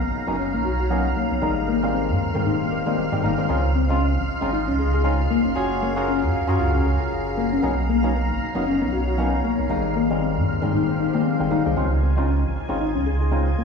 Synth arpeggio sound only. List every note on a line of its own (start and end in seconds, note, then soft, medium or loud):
0.39 0.45 C#4 loud
0.54 0.60 A#3 medium
0.65 0.68 F#4 medium
0.80 0.86 F#4 medium
1.17 1.25 A#3 loud
1.31 1.38 B3 medium
1.68 1.74 A#3 loud
1.94 1.98 C4 medium
2.46 2.52 D#4 loud
2.61 2.67 A#3 medium
2.72 2.77 A#4 medium
2.86 2.93 A#3 loud
2.98 3.03 G4 medium
3.23 3.29 A#3 loud
3.38 3.41 A#4 loud
3.75 3.81 C4 loud
4.01 4.05 C#4 medium
4.53 4.59 D#4 loud
4.68 4.74 C#4 loud
4.79 4.82 G#4 medium
4.93 5.00 G#4 medium
5.30 5.39 A#3 loud
5.45 5.52 C#4 medium
5.82 5.88 A#3 loud
6.08 6.11 C#4 medium
6.60 6.65 F4 loud
6.74 6.81 C#4 loud
6.86 6.89 G#4 medium
7.00 7.07 G#4 medium
7.37 7.46 A#3 loud
7.52 7.59 C#4 medium
7.89 7.95 A#3 loud
8.15 8.18 B3 medium
8.66 8.72 C#4 loud
8.81 8.88 B3 loud
8.92 8.96 F#4 medium
9.07 9.14 F#4 medium
9.44 9.53 A#3 loud
9.59 9.65 B3 medium
9.96 10.02 A#3 loud
10.22 10.25 C4 medium
10.73 10.79 D#4 loud
10.88 10.95 C4 loud
10.99 11.05 D#4 medium
11.14 11.18 A#3 loud
11.25 11.31 C4 medium
11.51 11.57 D#4 medium
11.66 11.72 G#4 medium
12.03 12.09 C4 loud
12.29 12.32 C#4 medium
12.80 12.86 D#4 loud
12.95 13.02 C#4 loud
13.06 13.10 G#4 medium
13.21 13.28 G#4 medium
13.58 13.64 A#3 loud